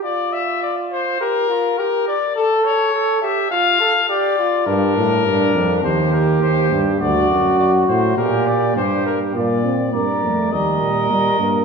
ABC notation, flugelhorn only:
X:1
M:4/4
L:1/8
Q:1/4=103
K:Gm
V:1 name="Flugelhorn"
F4 G F G z | A2 A G F A G F | D2 D2 G4 | ^F4 G2 G2 |
F2 B2 B4 |]